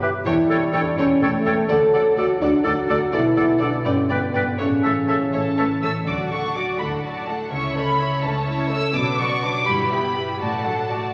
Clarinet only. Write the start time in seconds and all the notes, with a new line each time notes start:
0.02 G4
0.49 A4
0.73 A4
1.22 A4
1.45 A4
1.94 A4
2.17 A4
2.64 A4
2.89 A4
3.37 A4
3.61 A4
4.11 B4
4.36 B4
4.85 A4
5.10 A4
5.59 A4
5.84 A4